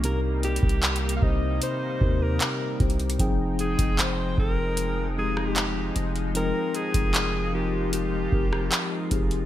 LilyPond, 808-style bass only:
\new Staff \with { instrumentName = "808-style bass" } { \clef bass \time 4/4 \key f \minor \tempo 4 = 76 c,8. c,8. c,8 r8 ees,8 r8 c,8 | f,,8. f,,16 f,,8 f,,2 f,,8~ | f,,16 r8 f,,4.~ f,,16 f,,8 r8 f,,8 | }